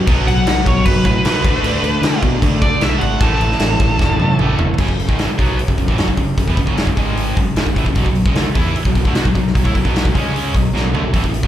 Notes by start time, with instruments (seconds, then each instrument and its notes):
0.06 fingered electric bass B1, distorted electric guitar B2 F#3 B3, kick, crash
0.26 fingered electric bass B1, distorted electric guitar B2 F#3, lead electric guitar F#5, crash
0.45 fingered electric bass B1, distorted electric guitar B2 F#3, snare, crash
0.66 fingered electric bass B1, distorted electric guitar B2 F#3, lead electric guitar C#5, kick, crash
0.85 fingered electric bass F#1, distorted electric guitar B2 F#3, lead electric guitar B4, kick, crash
1.04 fingered electric bass A2, distorted electric guitar B2 F#3 B3, lead electric guitar B4, kick, crash
1.24 fingered electric bass C#2, distorted electric guitar B2 F#3 B3, snare, crash
1.44 fingered electric bass D2, distorted electric guitar D3 A3 D4, kick, crash
1.63 fingered electric bass D2, distorted electric guitar D3 A3 D4, crash
1.83 fingered electric bass D2, distorted electric guitar D3 A3, crash
2.02 fingered electric bass D3, distorted electric guitar D3 A3, snare, crash
2.22 fingered electric bass B2, distorted electric guitar D3 A3, kick, crash
2.42 fingered electric bass D3, distorted electric guitar D3 A3 D4, kick, crash
2.62 fingered electric bass D2, distorted electric guitar D3 A3 D4, lead electric guitar D5, kick, crash
2.81 fingered electric bass B1, distorted electric guitar D3 A3 D4, lead electric guitar E5, snare, crash
2.99 fingered electric bass G#1, distorted electric guitar D3 A3, lead electric guitar F#5, crash
3.21 fingered electric bass A1, distorted electric guitar A2 E3 A3, lead electric guitar A5, kick, crash
3.40 fingered electric bass A1, distorted electric guitar A2 E3, crash
3.52 snare
3.59 fingered electric bass A1, distorted electric guitar A2 E3, snare, crash
3.80 fingered electric bass A1, distorted electric guitar A2 E3, kick, crash
3.99 fingered electric bass E1, distorted electric guitar A2 E3, kick, snare
4.18 fingered electric bass F#2, distorted electric guitar A2 E3 A3, high tom
4.39 fingered electric bass A1, distorted electric guitar A2 E3 A3, mid tom
4.59 fingered electric bass E1, distorted electric guitar A2 E3, floor tom
4.78 fingered electric bass F#1, distorted electric guitar F#2 C#3, kick, crash
4.88 fingered electric bass F#1, distorted electric guitar F#2 C#3, kick
4.99 open hi-hat
5.07 fingered electric bass G#1, distorted electric guitar G#2 D#3, kick
5.17 fingered electric bass A1, distorted electric guitar A2 E3, snare, open hi-hat
5.27 muted distorted electric guitar stroke, muted fingered electric bass stroke
5.38 fingered electric bass B1, distorted electric guitar B2 F#3 B3, kick, open hi-hat
5.58 muted distorted electric guitar stroke, muted fingered electric bass stroke, open hi-hat
5.68 fingered electric bass F#1, distorted electric guitar F#2 C#3, kick
5.78 fingered electric bass F#1, distorted electric guitar F#2 C#3, kick, open hi-hat
5.87 fingered electric bass A1, distorted electric guitar A2 E3, kick
5.98 fingered electric bass F#2, distorted electric guitar F#3 C#4, snare, open hi-hat
6.07 fingered electric bass F#1, distorted electric guitar F#2 C#3, kick
6.17 fingered electric bass F#1, distorted electric guitar F#2 C#3, kick, open hi-hat
6.37 fingered electric bass F#1, distorted electric guitar F#2 C#3, kick, open hi-hat
6.47 fingered electric bass E2, distorted electric guitar E3 B3, kick
6.57 fingered electric bass F#1, distorted electric guitar F#2 C#3, kick, open hi-hat
6.66 fingered electric bass F#1, distorted electric guitar F#2 C#3 F#3, kick
6.77 snare, open hi-hat
6.86 fingered electric bass F#1, distorted electric guitar F#2 C#3, kick
6.96 fingered electric bass G#1, distorted electric guitar G#2 D#3 G#3, kick, open hi-hat
7.17 open hi-hat
7.37 fingered electric bass F#1, distorted electric guitar F#2 C#3, kick, open hi-hat
7.56 fingered electric bass F#1, distorted electric guitar F#2 C#3, snare, open hi-hat
7.66 fingered electric bass F#1, distorted electric guitar F#2 C#3, kick
7.75 fingered electric bass A1, distorted electric guitar A2 E3, kick, open hi-hat
7.86 fingered electric bass F#1, distorted electric guitar F#2 C#3, kick
7.95 fingered electric bass B1, distorted electric guitar B2 F#3, kick, open hi-hat
8.05 fingered electric bass B1, distorted electric guitar B2 F#3, kick
8.15 open hi-hat
8.25 fingered electric bass C#2, distorted electric guitar C#3 G#3, kick
8.35 fingered electric bass D2, distorted electric guitar D3 A3, snare, open hi-hat
8.46 muted fingered electric bass stroke, muted distorted electric guitar stroke
8.55 fingered electric bass E2, distorted electric guitar E3 B3 E4, kick, open hi-hat
8.74 muted fingered electric bass stroke, muted distorted electric guitar stroke, open hi-hat
8.85 fingered electric bass B1, distorted electric guitar B2 F#3, kick
8.95 fingered electric bass B1, distorted electric guitar B2 F#3, kick, open hi-hat
9.04 fingered electric bass D2, distorted electric guitar D3 A3, kick
9.14 fingered electric bass B2, distorted electric guitar B3 F#4, snare, open hi-hat
9.24 fingered electric bass B1, distorted electric guitar B2 F#3, kick
9.34 fingered electric bass B1, distorted electric guitar B2 F#3, kick, open hi-hat
9.47 snare
9.54 fingered electric bass B1, distorted electric guitar B2 F#3, kick, open hi-hat
9.64 fingered electric bass A2, distorted electric guitar A3 E4, kick
9.74 fingered electric bass B1, distorted electric guitar B2 F#3, kick, open hi-hat
9.84 fingered electric bass B1, distorted electric guitar B2 F#3 B3, kick
9.96 snare, open hi-hat
10.05 fingered electric bass B1, distorted electric guitar B2 F#3, kick
10.14 fingered electric bass C#2, distorted electric guitar C#3 G#3 C#4, kick, open hi-hat
10.36 open hi-hat
10.54 fingered electric bass B1, distorted electric guitar B2 F#3, kick, open hi-hat
10.73 fingered electric bass B1, distorted electric guitar B2 F#3, snare
10.83 fingered electric bass B1, distorted electric guitar B2 F#3
10.94 fingered electric bass D2, distorted electric guitar D3 A3, floor tom
11.03 fingered electric bass B1, distorted electric guitar B2 F#3
11.13 fingered electric bass A1, distorted electric guitar A2 E3, kick, open hi-hat
11.24 fingered electric bass A1, distorted electric guitar A2 E3, kick
11.34 open hi-hat
11.43 fingered electric bass B1, distorted electric guitar B2 F#3, kick